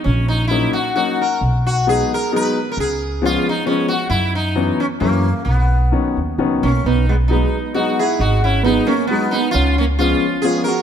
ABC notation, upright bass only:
X:1
M:3/4
L:1/8
Q:"Swing" 1/4=133
K:B
V:1 name="Upright bass" clef=bass
A,,,4 z2 | B,,,4 z2 | C,,4 z2 | F,,4 F,,2 |
B,,,3 D,, C,, B,,, | B,,,4 z2 | G,,,4 z2 | C,,4 z2 |]